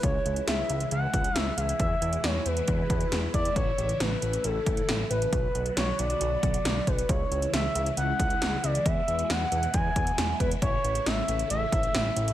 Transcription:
0.03 analog synth bass C#2, string machine C#3 E3 G#3 E4, analog synth lead C#5, kick, closed hi-hat
0.26 analog synth bass C#2, closed hi-hat
0.36 closed hi-hat
0.48 analog synth bass C#2, analog synth lead E5, snare, closed hi-hat
0.70 analog synth bass C#2, closed hi-hat
0.80 closed hi-hat
0.91 analog synth bass C#2, analog synth lead F#5, closed hi-hat
1.14 analog synth bass C#2, kick, closed hi-hat
1.24 closed hi-hat
1.36 analog synth bass C#2, analog synth lead E5, snare, closed hi-hat
1.57 analog synth bass C#2, analog synth lead E5, closed hi-hat
1.69 closed hi-hat
1.80 analog synth bass E2, string machine B2 G#3, analog synth lead E5, kick, closed hi-hat
2.02 analog synth bass E2, closed hi-hat
2.13 closed hi-hat
2.24 analog synth bass E2, analog synth lead C#5, snare, closed hi-hat
2.46 analog synth bass E2, analog synth lead B4, closed hi-hat
2.57 closed hi-hat
2.68 analog synth bass E2, kick, closed hi-hat
2.90 analog synth bass E2, kick, closed hi-hat
3.01 closed hi-hat
3.12 analog synth bass E2, snare, closed hi-hat
3.34 analog synth bass E2, analog synth lead D5, kick, closed hi-hat
3.45 closed hi-hat
3.56 analog synth bass A1, string machine C#3 A3, analog synth lead C#5, kick, closed hi-hat
3.78 analog synth bass A1, closed hi-hat
3.89 closed hi-hat
4.00 analog synth bass A1, analog synth lead B4, snare, closed hi-hat
4.22 analog synth bass A1, closed hi-hat
4.33 closed hi-hat
4.44 analog synth bass A1, analog synth lead A4, closed hi-hat
4.66 analog synth bass A1, kick, closed hi-hat
4.77 closed hi-hat
4.89 analog synth bass A1, snare, closed hi-hat
5.10 analog synth bass A1, analog synth lead B4, closed hi-hat
5.22 closed hi-hat
5.32 analog synth bass B1, string machine D3 F#3 B3 F#4, analog synth lead B4, kick, closed hi-hat
5.55 analog synth bass B1, closed hi-hat
5.66 closed hi-hat
5.76 analog synth bass B1, analog synth lead C#5, snare, closed hi-hat
5.99 analog synth bass B1, analog synth lead D5, closed hi-hat
6.10 closed hi-hat
6.21 analog synth bass B1, closed hi-hat
6.43 analog synth bass B1, kick, closed hi-hat
6.54 closed hi-hat
6.65 analog synth bass B1, snare, closed hi-hat
6.87 analog synth bass B1, analog synth lead B4, kick, closed hi-hat
6.99 closed hi-hat
7.09 analog synth bass C#2, string machine C#3 E3 G#3 E4, analog synth lead C#5, kick, closed hi-hat
7.31 analog synth bass C#2, closed hi-hat
7.42 closed hi-hat
7.53 analog synth bass C#2, analog synth lead E5, snare, closed hi-hat
7.75 analog synth bass C#2, closed hi-hat
7.86 closed hi-hat
7.97 analog synth bass C#2, analog synth lead F#5, closed hi-hat
8.19 analog synth bass C#2, kick, closed hi-hat
8.30 closed hi-hat
8.42 analog synth bass C#2, snare, closed hi-hat
8.63 analog synth bass C#2, analog synth lead D5, closed hi-hat
8.75 closed hi-hat
8.85 analog synth bass E2, string machine B2, analog synth lead E5, kick, closed hi-hat
9.08 analog synth bass E2, closed hi-hat
9.19 closed hi-hat
9.29 analog synth bass E2, analog synth lead F#5, snare, closed hi-hat
9.52 analog synth bass E2, closed hi-hat
9.63 closed hi-hat
9.74 analog synth bass E2, analog synth lead G#5, kick, closed hi-hat
9.96 analog synth bass E2, kick, closed hi-hat
10.07 closed hi-hat
10.18 analog synth bass E2, snare, closed hi-hat
10.40 analog synth bass E2, analog synth lead B4, kick, closed hi-hat
10.51 closed hi-hat
10.62 analog synth bass A1, string machine C#3 A3, analog synth lead C#5, kick, closed hi-hat
10.84 analog synth bass A1, closed hi-hat
10.95 closed hi-hat
11.06 analog synth bass A1, analog synth lead E5, snare, closed hi-hat
11.28 analog synth bass A1, closed hi-hat
11.39 closed hi-hat
11.50 analog synth bass A1, analog synth lead E5, closed hi-hat
11.72 analog synth bass A1, kick, closed hi-hat
11.83 closed hi-hat
11.94 analog synth bass A1, snare, closed hi-hat
12.16 analog synth bass A1, closed hi-hat
12.28 closed hi-hat

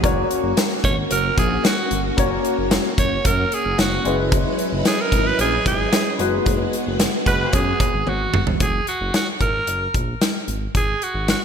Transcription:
Already playing: string machine F#4
0.03 analog synth bass F#1, grand piano A#3 C#4 F#4 C#5, string machine A#3 C#4, kick, closed hi-hat, cowbell
0.31 closed hi-hat
0.43 analog synth bass F#1
0.57 snare, closed hi-hat, cowbell
0.84 analog synth bass G#1, alto saxophone C#5, kick, closed hi-hat
1.11 analog synth bass F#1, alto saxophone A#4, closed hi-hat, cowbell
1.38 analog synth bass A#1, alto saxophone G#4, kick, closed hi-hat
1.64 alto saxophone F#4, snare, closed hi-hat, cowbell
1.91 analog synth bass G1, closed hi-hat
2.17 analog synth bass F#1, grand piano A#3 C#4 F#4 C#5, kick, closed hi-hat, cowbell
2.45 closed hi-hat
2.58 analog synth bass F#1
2.71 snare, closed hi-hat, cowbell
2.98 analog synth bass F#1, alto saxophone C#5, kick, closed hi-hat
3.25 analog synth bass F#2, alto saxophone A#4, kick, closed hi-hat, cowbell
3.52 alto saxophone G#4, closed hi-hat
3.65 analog synth bass F#1
3.78 analog synth bass F#1, alto saxophone F#4, snare, closed hi-hat, cowbell
4.04 analog synth bass F#1, string machine F#3 C#4 E4 B4 D#5, grand piano G#3 C#4 E4 B4, closed hi-hat
4.32 kick, closed hi-hat, cowbell
4.59 closed hi-hat
4.72 analog synth bass F#1
4.85 alto saxophone G#4, snare, closed hi-hat, cowbell
5.01 alto saxophone A#4
5.12 analog synth bass G#1, kick, closed hi-hat
5.27 alto saxophone B4
5.39 analog synth bass A#1, alto saxophone G#4, closed hi-hat, cowbell
5.66 analog synth bass G#1, alto saxophone G#4, kick, closed hi-hat
5.92 snare, closed hi-hat, cowbell
6.18 analog synth bass F#1, grand piano G#3 D#4 F#4 B4, string machine G#3 B3 F#4, closed hi-hat
6.46 analog synth bass F#1, kick, closed hi-hat, cowbell
6.73 closed hi-hat
6.87 analog synth bass F#1
7.00 snare, closed hi-hat, cowbell
7.26 analog synth bass F#1, horn section G#3 F#4 B4, alto saxophone B4, kick, closed hi-hat
7.53 analog synth bass F#2, alto saxophone G#4, kick, closed hi-hat, cowbell
7.80 kick, closed hi-hat, cowbell
7.94 analog synth bass G#1
8.07 analog synth bass G#1, alto saxophone F#4, high tom, cowbell
8.34 analog synth bass G1, mid tom
8.47 floor tom
8.60 analog synth bass F#1, alto saxophone G#4, kick, closed hi-hat
8.87 alto saxophone F#4, closed hi-hat
9.01 analog synth bass F#1
9.14 alto saxophone F#4, snare, closed hi-hat
9.41 analog synth bass G#1, alto saxophone A#4, kick, closed hi-hat
9.67 analog synth bass F#1, closed hi-hat
9.94 analog synth bass A#1, kick, closed hi-hat
10.21 snare, closed hi-hat
10.48 analog synth bass G#1, closed hi-hat
10.75 analog synth bass G#1, alto saxophone G#4, kick, closed hi-hat
11.02 alto saxophone F#4, closed hi-hat
11.14 analog synth bass G#1
11.28 alto saxophone F#4, snare, closed hi-hat

